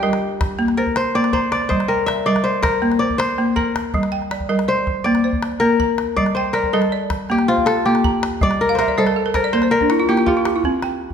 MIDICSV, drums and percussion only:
0, 0, Header, 1, 2, 480
1, 0, Start_track
1, 0, Tempo, 372439
1, 2199, Time_signature, 12, 3, 24, 8
1, 14355, End_track
2, 0, Start_track
2, 0, Title_t, "Calabash"
2, 36, Note_on_c, 9, 38, 19
2, 165, Note_off_c, 9, 38, 0
2, 169, Note_on_c, 9, 38, 61
2, 287, Note_off_c, 9, 38, 0
2, 287, Note_on_c, 9, 38, 19
2, 416, Note_off_c, 9, 38, 0
2, 525, Note_on_c, 9, 36, 73
2, 525, Note_on_c, 9, 38, 75
2, 654, Note_off_c, 9, 36, 0
2, 654, Note_off_c, 9, 38, 0
2, 881, Note_on_c, 9, 38, 45
2, 1010, Note_off_c, 9, 38, 0
2, 1115, Note_on_c, 9, 36, 50
2, 1115, Note_on_c, 9, 38, 22
2, 1237, Note_off_c, 9, 38, 0
2, 1237, Note_on_c, 9, 38, 72
2, 1244, Note_off_c, 9, 36, 0
2, 1366, Note_off_c, 9, 38, 0
2, 1600, Note_on_c, 9, 38, 52
2, 1714, Note_on_c, 9, 36, 64
2, 1729, Note_off_c, 9, 38, 0
2, 1843, Note_off_c, 9, 36, 0
2, 1959, Note_on_c, 9, 38, 61
2, 2080, Note_off_c, 9, 38, 0
2, 2080, Note_on_c, 9, 38, 21
2, 2203, Note_off_c, 9, 38, 0
2, 2203, Note_on_c, 9, 36, 73
2, 2203, Note_on_c, 9, 38, 23
2, 2322, Note_off_c, 9, 38, 0
2, 2322, Note_on_c, 9, 38, 51
2, 2332, Note_off_c, 9, 36, 0
2, 2451, Note_off_c, 9, 38, 0
2, 2561, Note_on_c, 9, 38, 20
2, 2684, Note_off_c, 9, 38, 0
2, 2684, Note_on_c, 9, 38, 64
2, 2813, Note_off_c, 9, 38, 0
2, 3041, Note_on_c, 9, 38, 57
2, 3161, Note_off_c, 9, 38, 0
2, 3161, Note_on_c, 9, 38, 22
2, 3290, Note_off_c, 9, 38, 0
2, 3395, Note_on_c, 9, 36, 80
2, 3395, Note_on_c, 9, 38, 78
2, 3524, Note_off_c, 9, 36, 0
2, 3524, Note_off_c, 9, 38, 0
2, 3640, Note_on_c, 9, 38, 22
2, 3758, Note_off_c, 9, 38, 0
2, 3758, Note_on_c, 9, 38, 46
2, 3887, Note_off_c, 9, 38, 0
2, 3997, Note_on_c, 9, 36, 55
2, 4120, Note_on_c, 9, 38, 75
2, 4126, Note_off_c, 9, 36, 0
2, 4238, Note_off_c, 9, 38, 0
2, 4238, Note_on_c, 9, 38, 24
2, 4367, Note_off_c, 9, 38, 0
2, 4596, Note_on_c, 9, 36, 70
2, 4725, Note_off_c, 9, 36, 0
2, 4843, Note_on_c, 9, 38, 69
2, 4971, Note_off_c, 9, 38, 0
2, 5075, Note_on_c, 9, 36, 79
2, 5075, Note_on_c, 9, 38, 25
2, 5195, Note_off_c, 9, 38, 0
2, 5195, Note_on_c, 9, 38, 55
2, 5204, Note_off_c, 9, 36, 0
2, 5324, Note_off_c, 9, 38, 0
2, 5439, Note_on_c, 9, 38, 21
2, 5557, Note_off_c, 9, 38, 0
2, 5557, Note_on_c, 9, 38, 59
2, 5675, Note_on_c, 9, 36, 56
2, 5686, Note_off_c, 9, 38, 0
2, 5804, Note_off_c, 9, 36, 0
2, 5916, Note_on_c, 9, 38, 59
2, 6040, Note_off_c, 9, 38, 0
2, 6040, Note_on_c, 9, 38, 22
2, 6169, Note_off_c, 9, 38, 0
2, 6277, Note_on_c, 9, 36, 75
2, 6406, Note_off_c, 9, 36, 0
2, 6514, Note_on_c, 9, 38, 22
2, 6635, Note_off_c, 9, 38, 0
2, 6635, Note_on_c, 9, 38, 47
2, 6764, Note_off_c, 9, 38, 0
2, 6868, Note_on_c, 9, 36, 58
2, 6992, Note_on_c, 9, 38, 63
2, 6997, Note_off_c, 9, 36, 0
2, 7112, Note_off_c, 9, 38, 0
2, 7112, Note_on_c, 9, 38, 21
2, 7241, Note_off_c, 9, 38, 0
2, 7471, Note_on_c, 9, 36, 67
2, 7600, Note_off_c, 9, 36, 0
2, 7709, Note_on_c, 9, 38, 56
2, 7838, Note_off_c, 9, 38, 0
2, 7954, Note_on_c, 9, 36, 60
2, 7954, Note_on_c, 9, 38, 20
2, 8072, Note_off_c, 9, 38, 0
2, 8072, Note_on_c, 9, 38, 44
2, 8083, Note_off_c, 9, 36, 0
2, 8201, Note_off_c, 9, 38, 0
2, 8307, Note_on_c, 9, 38, 18
2, 8426, Note_off_c, 9, 38, 0
2, 8426, Note_on_c, 9, 38, 60
2, 8550, Note_on_c, 9, 36, 49
2, 8555, Note_off_c, 9, 38, 0
2, 8679, Note_off_c, 9, 36, 0
2, 8786, Note_on_c, 9, 38, 53
2, 8915, Note_off_c, 9, 38, 0
2, 8915, Note_on_c, 9, 38, 19
2, 9044, Note_off_c, 9, 38, 0
2, 9152, Note_on_c, 9, 36, 71
2, 9152, Note_on_c, 9, 38, 69
2, 9281, Note_off_c, 9, 36, 0
2, 9281, Note_off_c, 9, 38, 0
2, 9394, Note_on_c, 9, 38, 22
2, 9518, Note_off_c, 9, 38, 0
2, 9518, Note_on_c, 9, 38, 49
2, 9647, Note_off_c, 9, 38, 0
2, 9765, Note_on_c, 9, 36, 53
2, 9885, Note_on_c, 9, 38, 65
2, 9894, Note_off_c, 9, 36, 0
2, 10005, Note_off_c, 9, 38, 0
2, 10005, Note_on_c, 9, 38, 22
2, 10134, Note_off_c, 9, 38, 0
2, 10245, Note_on_c, 9, 38, 56
2, 10367, Note_on_c, 9, 36, 68
2, 10374, Note_off_c, 9, 38, 0
2, 10496, Note_off_c, 9, 36, 0
2, 10607, Note_on_c, 9, 38, 76
2, 10736, Note_off_c, 9, 38, 0
2, 10841, Note_on_c, 9, 36, 74
2, 10964, Note_on_c, 9, 38, 56
2, 10970, Note_off_c, 9, 36, 0
2, 11093, Note_off_c, 9, 38, 0
2, 11202, Note_on_c, 9, 38, 19
2, 11324, Note_off_c, 9, 38, 0
2, 11324, Note_on_c, 9, 38, 66
2, 11441, Note_on_c, 9, 36, 48
2, 11453, Note_off_c, 9, 38, 0
2, 11570, Note_off_c, 9, 36, 0
2, 11684, Note_on_c, 9, 38, 58
2, 11812, Note_off_c, 9, 38, 0
2, 12041, Note_on_c, 9, 36, 71
2, 12041, Note_on_c, 9, 38, 70
2, 12170, Note_off_c, 9, 36, 0
2, 12170, Note_off_c, 9, 38, 0
2, 12280, Note_on_c, 9, 38, 22
2, 12396, Note_off_c, 9, 38, 0
2, 12396, Note_on_c, 9, 38, 49
2, 12517, Note_off_c, 9, 38, 0
2, 12517, Note_on_c, 9, 38, 23
2, 12640, Note_on_c, 9, 36, 56
2, 12645, Note_off_c, 9, 38, 0
2, 12756, Note_on_c, 9, 38, 66
2, 12769, Note_off_c, 9, 36, 0
2, 12884, Note_off_c, 9, 38, 0
2, 13112, Note_on_c, 9, 38, 51
2, 13233, Note_off_c, 9, 38, 0
2, 13233, Note_on_c, 9, 36, 64
2, 13233, Note_on_c, 9, 38, 22
2, 13362, Note_off_c, 9, 36, 0
2, 13362, Note_off_c, 9, 38, 0
2, 13473, Note_on_c, 9, 38, 64
2, 13602, Note_off_c, 9, 38, 0
2, 13709, Note_on_c, 9, 36, 58
2, 13838, Note_off_c, 9, 36, 0
2, 13951, Note_on_c, 9, 38, 55
2, 14073, Note_off_c, 9, 38, 0
2, 14073, Note_on_c, 9, 38, 19
2, 14202, Note_off_c, 9, 38, 0
2, 14312, Note_on_c, 9, 36, 51
2, 14355, Note_off_c, 9, 36, 0
2, 14355, End_track
0, 0, End_of_file